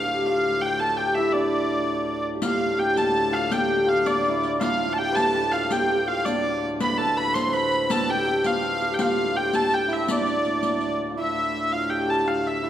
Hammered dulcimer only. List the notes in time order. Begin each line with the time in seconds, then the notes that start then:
Already playing: D4 F4 A4 B4
0.06 G4
0.26 F4
0.80 A4
0.99 G4
1.18 E4
1.35 D4
2.35 G4
2.42 F4
2.78 G4
2.96 A4
3.32 F4
3.51 G4
3.69 G4
3.86 F4
4.05 D4
4.29 E4
4.59 F4
4.78 F4
4.99 G4
5.12 B4
5.16 A4
5.34 G4
5.53 F4
5.71 G4
5.88 G4
6.07 F4
6.26 D4
6.80 B4
6.99 A4
7.17 B4
7.35 C5
7.48 C5
7.54 B4
7.90 A4
8.09 G4
8.27 G4
8.45 F4
8.81 G4
8.99 F4
9.35 G4
9.53 A4
9.88 E4
10.07 D4
11.10 F4
11.17 E4
11.71 F4
11.90 G4
12.07 A4
12.26 F4
12.62 E4